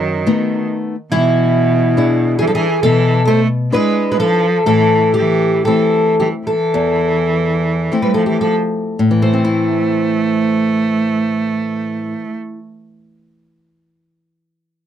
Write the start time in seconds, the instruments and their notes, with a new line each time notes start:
Already playing: nylon-string guitar F#2, cello D#3, twelve-string acoustic guitar F#4
0.27 nylon-string guitar A3 B3 D#4
1.12 cello B2, nylon-string guitar E3, twelve-string acoustic guitar E4
1.97 nylon-string guitar D4 E4 G#4
2.39 cello E3, twelve-string acoustic guitar G#4
2.47 cello F3, twelve-string acoustic guitar A4
2.55 cello E3, twelve-string acoustic guitar G#4
2.83 nylon-string guitar B2, cello E3, twelve-string acoustic guitar A4
3.27 cello A3, twelve-string acoustic guitar C5
3.72 cello G#3, nylon-string guitar D4 E4 B4, twelve-string acoustic guitar B4
4.12 cello G#3, twelve-string acoustic guitar B4
4.20 cello F3, twelve-string acoustic guitar A4
4.66 nylon-string guitar A2, cello E3, twelve-string acoustic guitar A4
5.14 twelve-string acoustic guitar G4
5.19 cello E3
5.65 cello E3, nylon-string guitar A3 C4 E4, twelve-string acoustic guitar A4
6.20 cello E3, twelve-string acoustic guitar G4
6.47 cello E3, twelve-string acoustic guitar A4
6.74 nylon-string guitar E2
7.92 nylon-string guitar A3 C4 E4
8.02 cello G3, twelve-string acoustic guitar B4
8.14 cello F3, twelve-string acoustic guitar A4
8.26 cello E3, twelve-string acoustic guitar G4
8.41 cello F3, twelve-string acoustic guitar A4
8.99 nylon-string guitar A2
9.11 nylon-string guitar E3
9.22 cello A3, nylon-string guitar A3, twelve-string acoustic guitar C5
9.33 nylon-string guitar C4
9.45 nylon-string guitar E4